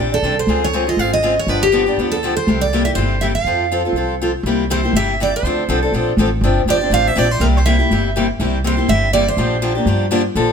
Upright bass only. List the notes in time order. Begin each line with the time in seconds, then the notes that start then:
Already playing: A#1
0.22 C2
0.47 C#2
0.97 G#1
1.47 G1
1.97 D2
2.47 C2
2.96 G1
3.44 F2
3.92 C2
4.43 C2
4.93 G1
5.43 D2
5.68 C2
5.92 A#1
6.17 A1
6.41 G1
6.66 G1
6.90 A1
7.16 A#1
7.40 C2
7.90 G1
8.39 C2
8.88 G1
9.37 A#1
9.86 G2
10.35 A#1